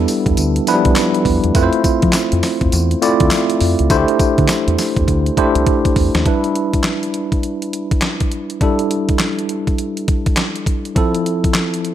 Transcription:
Already playing: tine electric piano G3 B3 D4 E4 A4 B4
0.08 open hi-hat, tambourine
0.26 fingered electric bass E2, kick, closed hi-hat
0.37 fingered electric bass D2, closed hi-hat, tambourine
0.56 closed hi-hat
0.67 tine electric piano F3 B3 D4 E4 B4, closed hi-hat, tambourine
0.74 tine electric piano G3
0.85 fingered electric bass B1, kick, closed hi-hat
0.96 snare, clap, closed hi-hat, tambourine
1.15 closed hi-hat
1.25 fingered electric bass E2, kick, open hi-hat
1.44 fingered electric bass E2, closed hi-hat
1.55 fingered electric bass F2, tine electric piano A3 C4 E4 F4 B4, kick, closed hi-hat, tambourine
1.63 tine electric piano C5
1.73 closed hi-hat
1.84 muted fingered electric bass stroke, kick, closed hi-hat, tambourine
2.02 fingered electric bass F3, kick, closed hi-hat
2.13 snare, clap, closed hi-hat, tambourine
2.32 fingered electric bass F2, closed hi-hat
2.43 snare, open hi-hat, tambourine
2.61 fingered electric bass F2, kick, closed hi-hat
2.72 fingered electric bass E2, closed hi-hat, tambourine
2.91 closed hi-hat
3.02 tine electric piano A3 C4 E4 F4 D5, closed hi-hat, tambourine
3.20 fingered electric bass D2, kick, closed hi-hat
3.31 snare, clap, closed hi-hat, tambourine
3.50 closed hi-hat
3.61 fingered electric bass F2, open hi-hat
3.79 fingered electric bass C#2, closed hi-hat
3.90 fingered electric bass D2, tine electric piano A3 D4 E4 F#4 C5, kick, closed hi-hat, tambourine
3.97 tine electric piano G4
4.08 closed hi-hat
4.19 muted fingered electric bass stroke, kick, closed hi-hat, tambourine
4.38 fingered electric bass D3, kick, closed hi-hat
4.48 snare, clap, closed hi-hat, tambourine
4.68 fingered electric bass E2, closed hi-hat
4.78 snare, open hi-hat, tambourine
4.97 fingered electric bass E2, kick, closed hi-hat
5.08 fingered electric bass D2, kick, closed hi-hat
5.26 closed hi-hat
5.37 tine electric piano A3 D4 E4 G4 C5, kick, closed hi-hat
5.55 fingered electric bass C2, closed hi-hat
5.66 kick, closed hi-hat
5.85 kick, closed hi-hat
5.96 fingered electric bass E2, kick, open hi-hat
6.15 fingered electric bass D#2, snare, closed hi-hat
6.25 tine electric piano G3 D4 E4 B4, kick, closed hi-hat
6.44 closed hi-hat
6.55 closed hi-hat
6.73 kick, closed hi-hat
6.84 snare, clap, closed hi-hat
7.03 closed hi-hat
7.14 closed hi-hat
7.32 kick, closed hi-hat
7.43 closed hi-hat
7.62 closed hi-hat
7.73 closed hi-hat
7.91 kick, closed hi-hat
8.02 snare, clap, closed hi-hat
8.20 kick, closed hi-hat
8.32 closed hi-hat
8.50 closed hi-hat
8.61 tine electric piano G3 D4 E4 A4, kick, closed hi-hat
8.79 closed hi-hat
8.91 closed hi-hat
9.09 kick, closed hi-hat
9.19 snare, clap, closed hi-hat
9.39 closed hi-hat
9.49 closed hi-hat
9.67 kick, closed hi-hat
9.78 closed hi-hat
9.97 closed hi-hat
10.08 kick, closed hi-hat
10.26 kick, closed hi-hat
10.37 snare, clap, closed hi-hat
10.56 closed hi-hat
10.66 kick, closed hi-hat
10.85 closed hi-hat
10.95 tine electric piano F3 C4 E4 A4, kick, closed hi-hat
11.15 closed hi-hat
11.26 closed hi-hat
11.44 kick, closed hi-hat
11.54 snare, clap, closed hi-hat
11.74 closed hi-hat
11.85 closed hi-hat

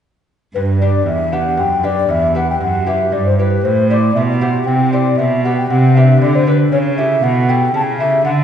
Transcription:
0.55 cello G2, lute G2, flute B4
0.80 lute D4 G4 B4, flute D5
1.06 lute E2, cello E2, flute E5
1.32 lute D4 G4 B4, flute F#5
1.57 lute F#2, cello F#2, flute G5
1.83 lute D4 G4 B4, flute D5
2.09 lute E2, cello E2, flute E5
2.35 lute E4 G4 B4, flute F#5
2.50 flute G5
2.61 lute F#2, cello F#2, flute F#5
2.86 lute E4 G4 B4, flute E5
3.12 lute G2, cello G2, flute D5
3.26 flute C5
3.38 lute E4 G4 B4, flute B4
3.64 lute A2, cello A2, flute C5
3.90 lute E4 G4 C5, flute D5
4.15 cello B2, lute B2, flute E5
4.41 lute E4 G4 C5, flute F#5
4.66 lute C3, cello C3, flute G5
4.92 lute E4 G4 C5, flute D5
5.18 lute B2, cello B2, flute E5
5.44 lute D4 G4 B4, flute F#5
5.57 flute G5
5.70 lute C3, cello C3, flute F#5
5.96 lute D4 G4 B4, flute E5
6.21 cello D3, lute D3, flute D5
6.35 flute C5
6.47 lute D4 G4 B4, flute B4
6.72 cello C#3, lute C#3, flute C#5
6.97 lute E4 G4 A4, flute E5
7.23 lute B2, cello B2, flute F#5
7.49 lute E4 G4 A4, flute G5
7.74 lute C#3, cello C#3, flute A5
7.99 lute E4 G4 A4, flute E5
8.25 lute D3, cello D3, flute F#5

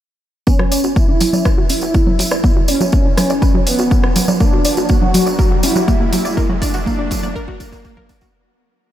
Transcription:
0.47 synth pluck B3, supersaw synth C#4, kick, tambourine, riser
0.59 analog synth bass B1, synth pluck F#4, cross-stick, low conga
0.72 synth pluck D5, open hi-hat, tambourine
0.84 analog synth bass B1, synth pluck F#4, tambourine
0.96 synth pluck B3, supersaw synth E4, kick, tambourine
1.09 synth pluck D4
1.20 analog synth bass B1, synth pluck F#3, open hi-hat, tambourine
1.33 analog synth bass B1, synth pluck D5, tambourine, low conga
1.45 synth pluck B4, kick, cross-stick, tambourine
1.58 analog synth bass B1, synth pluck F#4
1.69 synth pluck C#4, supersaw synth E4, open hi-hat, tambourine
1.81 analog synth bass B1, synth pluck F#4, tambourine
1.94 synth pluck B3, kick, tambourine
2.07 synth pluck B3, low conga
2.19 analog synth bass B1, synth pluck F#3, open hi-hat, tambourine
2.31 analog synth bass B1, synth pluck D5, cross-stick, tambourine
2.44 synth pluck B3, kick, tambourine
2.56 analog synth bass B1, synth pluck F#4
2.68 supersaw synth C#4, synth pluck D5, open hi-hat, tambourine
2.81 analog synth bass B1, synth pluck F#4, tambourine, low conga
2.92 synth pluck B3, kick, tambourine
3.05 synth pluck D4
3.18 analog synth bass B1, synth pluck F#3, cross-stick, open hi-hat, tambourine
3.30 analog synth bass B1, synth pluck D5, tambourine
3.42 synth pluck B4, kick, tambourine
3.54 analog synth bass B1, synth pluck F#4, low conga
3.67 supersaw synth B3, synth pluck C#4, open hi-hat, tambourine
3.79 analog synth bass B1, synth pluck F#4, tambourine
3.91 synth pluck B3, kick, tambourine
4.04 synth pluck B3, cross-stick
4.16 analog synth bass B1, synth pluck F#3, open hi-hat, tambourine
4.28 analog synth bass B1, synth pluck D5, tambourine, low conga
4.40 synth pluck A#3, supersaw synth D4, kick, tambourine
4.53 analog synth bass G1, synth pluck F#4
4.65 synth pluck D5, open hi-hat, tambourine
4.77 analog synth bass G1, synth pluck F#4, tambourine
4.89 synth pluck A#3, supersaw synth F#4, kick, tambourine
5.02 synth pluck D4, low conga
5.14 analog synth bass G1, synth pluck F#3, open hi-hat, tambourine
5.27 analog synth bass G1, synth pluck D5, tambourine
5.39 synth pluck A#4, kick, tambourine
5.51 synth pluck F#4
5.63 synth pluck C#4, supersaw synth E4, open hi-hat, tambourine
5.76 analog synth bass G1, synth pluck F#4, tambourine, low conga
5.88 synth pluck A#3, kick, tambourine
6.00 synth pluck A#3
6.13 analog synth bass G1, synth pluck F#3, open hi-hat, tambourine
6.25 analog synth bass G1, synth pluck D5, tambourine
6.37 synth pluck A#3, kick, tambourine
6.49 analog synth bass G1, synth pluck F#4, low conga
6.62 supersaw synth D4, synth pluck D5, kick, open hi-hat, tambourine
6.74 analog synth bass G1, synth pluck F#4, tambourine
6.86 synth pluck A#3, kick, tambourine
6.99 synth pluck D4
7.11 analog synth bass G1, synth pluck F#3, kick, open hi-hat, tambourine
7.23 analog synth bass G1, synth pluck D5, tambourine, low conga
7.36 synth pluck A#4, kick, tambourine
7.48 synth pluck F#4, kick
7.60 supersaw synth A#3, synth pluck D4, kick, open hi-hat, tambourine
7.72 analog synth bass D2, synth pluck A#3, kick, tambourine
7.85 synth pluck A#3, kick, tambourine
7.97 synth pluck A#4, kick, low conga
8.09 analog synth bass G1, synth pluck D4, kick, open hi-hat, tambourine
8.21 synth pluck F#4, kick, tambourine

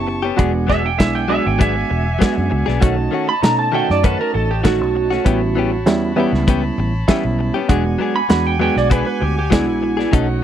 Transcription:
Already playing: fingered electric bass F#1, reed electric piano B3 C#4 E4 G4, horn section C#5 A5 C#6, electric slide guitar A5
0.07 muted clean electric guitar stroke
0.23 clean electric guitar B3 C#4 G4
0.37 fingered electric bass E1, clean electric guitar F#3 B3 D4 G#4, reed electric piano G#3 B3 D4 F#4, horn section D5 F#5 G#5, kick, closed hi-hat
0.54 muted clean electric guitar stroke
0.67 clean electric guitar F#3 B3 D4 G#4, electric slide guitar E5, kick, snare
0.83 electric slide guitar G5, muted clean electric guitar stroke
0.98 fingered electric bass B1, reed electric piano G#3 B3 D4 E4, electric slide guitar E5, muted clean electric guitar stroke, kick, snare, closed hi-hat
1.15 electric slide guitar G5
1.28 clean electric guitar F#3 B3 D4 G#4, reed electric piano G#3 B3 D4 F#4, electric slide guitar E5
1.45 fingered electric bass G#1, electric slide guitar G5, muted clean electric guitar stroke
1.59 clean electric guitar F#3 B3 D4 G#4, electric slide guitar E5, kick, closed hi-hat
1.76 muted clean electric guitar stroke
1.90 fingered electric bass E1, muted clean electric guitar stroke
2.19 clean electric guitar F#3 B3 D4 G#4, reed electric piano G#3 B3 D4 F#4, kick, snare, closed hi-hat
2.36 fingered electric bass F#2, muted clean electric guitar stroke
2.50 fingered electric bass C#2, muted clean electric guitar stroke
2.66 fingered electric bass B1, clean electric guitar B3 D4 G#4, snare
2.80 fingered electric bass B1, clean electric guitar D#3 A3 C#4 F#4, reed electric piano A3 C#4 D#4 F#4, horn section C#5 D#5 A5, kick, closed hi-hat
2.97 muted clean electric guitar stroke
3.11 clean electric guitar D#3 A3 C#4 F#4
3.28 electric slide guitar B5, muted clean electric guitar stroke
3.43 fingered electric bass B2, reed electric piano A3 C#4 D#4 A4, electric slide guitar A#5, muted clean electric guitar stroke, snare, closed hi-hat
3.59 electric slide guitar A5
3.72 clean electric guitar D#3 A3 C#4 F#4, reed electric piano A3 C#4 D#4 F#4, electric slide guitar G5
3.89 fingered electric bass F#2, electric slide guitar D5, muted clean electric guitar stroke, snare
4.04 clean electric guitar D#3 A3 C#4 F#4, electric slide guitar B4, kick, closed hi-hat
4.20 electric slide guitar A#4, muted clean electric guitar stroke
4.34 fingered electric bass A1, electric slide guitar A4, muted clean electric guitar stroke
4.51 electric slide guitar G4
4.63 clean electric guitar D#3 A3 C#4 F#4, reed electric piano A3 C#4 D#4 F#4, electric slide guitar F#4, kick, snare, closed hi-hat
4.80 fingered electric bass B1, muted clean electric guitar stroke
4.95 muted clean electric guitar stroke
5.11 clean electric guitar A3 C#4 F#4, snare
5.25 fingered electric bass A1, clean electric guitar E3 B3 C#4 G4, reed electric piano G3 B3 C#4 E4, horn section A5 B5, kick, closed hi-hat
5.42 muted clean electric guitar stroke
5.55 clean electric guitar E3 B3 C#4 G4
5.72 muted clean electric guitar stroke
5.86 fingered electric bass E2, reed electric piano G3 B3 C#4 E4, muted clean electric guitar stroke, snare, closed hi-hat
6.16 clean electric guitar E3 B3 C#4 G4, reed electric piano G3 B3 C#4 E4
6.33 fingered electric bass C#2, muted clean electric guitar stroke, snare
6.47 clean electric guitar E3 B3 C#4 G4, kick, closed hi-hat
6.64 muted clean electric guitar stroke
6.78 fingered electric bass A1, muted clean electric guitar stroke
7.08 clean electric guitar E3 B3 C#4 G4, reed electric piano G3 B3 C#4 E4, kick, snare, closed hi-hat
7.25 fingered electric bass B1, muted clean electric guitar stroke
7.39 muted clean electric guitar stroke
7.54 clean electric guitar B3 C#4 G4
7.68 fingered electric bass E1, clean electric guitar F#3 B3 D4 G#4, reed electric piano G#3 B3 D4 F#4, horn section D5 F#5 G#5, kick, closed hi-hat
7.85 muted clean electric guitar stroke
7.98 clean electric guitar F#3 B3 D4 G#4
8.15 electric slide guitar B5, muted clean electric guitar stroke
8.29 fingered electric bass E2, reed electric piano G#3 B3 D4 F#4, electric slide guitar B5, muted clean electric guitar stroke, snare, closed hi-hat
8.47 electric slide guitar G5
8.60 clean electric guitar F#3 B3 D4 G#4, reed electric piano G#3 B3 D4 F#4, electric slide guitar G5
8.76 fingered electric bass B1, electric slide guitar D5, muted clean electric guitar stroke, snare
8.90 clean electric guitar F#3 B3 D4 G#4, electric slide guitar B4, kick, closed hi-hat
9.06 electric slide guitar B4, muted clean electric guitar stroke
9.21 fingered electric bass D2, electric slide guitar G4, muted clean electric guitar stroke
9.39 electric slide guitar G4
9.50 clean electric guitar F#3 B3 D4 G#4, reed electric piano G#3 B3 D4 F#4, electric slide guitar E4, kick, snare, closed hi-hat
9.67 fingered electric bass A#1, muted clean electric guitar stroke
9.82 muted clean electric guitar stroke
9.97 clean electric guitar B3 D4 G#4, snare
10.12 fingered electric bass B1, clean electric guitar F#3 C#4 D#4 A4, reed electric piano A3 C#4 D#4 F#4, horn section C#5 D#5 F#5, kick, closed hi-hat
10.28 muted clean electric guitar stroke

